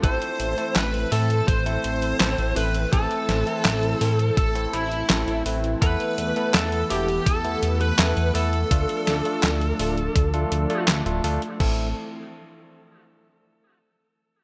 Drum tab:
CC |----------------|----------------|----------------|----------------|
HH |xxxxxxoxxxxxxxox|xxxxxxoxxxxxxxox|xxxxxxoxxxxxxxox|xxxxxxoxxxxxxxox|
CP |----x-------x---|----x-------x---|----x-------x---|----x-------x---|
SD |----o-------o---|--o-o-------o---|----o-------o---|--o-o-------o---|
BD |o-------o-------|o-------o-------|o-------o-------|o-------o-------|

CC |x---------------|
HH |----------------|
CP |----------------|
SD |----------------|
BD |o---------------|